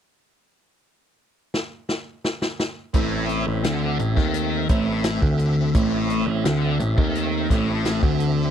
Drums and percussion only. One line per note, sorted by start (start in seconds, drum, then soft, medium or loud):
1.54 snare medium
1.89 snare medium
2.24 snare medium
2.42 snare medium
2.60 snare loud
2.94 kick loud
2.94 closed hi-hat medium
3.29 closed hi-hat medium
3.64 snare loud
3.64 closed hi-hat loud
3.99 closed hi-hat medium
4.17 kick medium
4.17 snare soft
4.34 closed hi-hat medium
4.69 kick medium
4.69 closed hi-hat medium
5.04 snare loud
5.04 closed hi-hat loud
5.22 kick loud
5.39 closed hi-hat medium
5.74 kick loud
5.74 closed hi-hat medium
6.10 closed hi-hat medium
6.45 snare loud
6.45 closed hi-hat medium
6.80 closed hi-hat medium
6.98 kick loud
7.15 closed hi-hat medium
7.50 kick medium
7.50 snare soft
7.50 closed hi-hat medium
7.85 snare medium
7.85 closed hi-hat medium
8.03 kick loud
8.20 closed hi-hat medium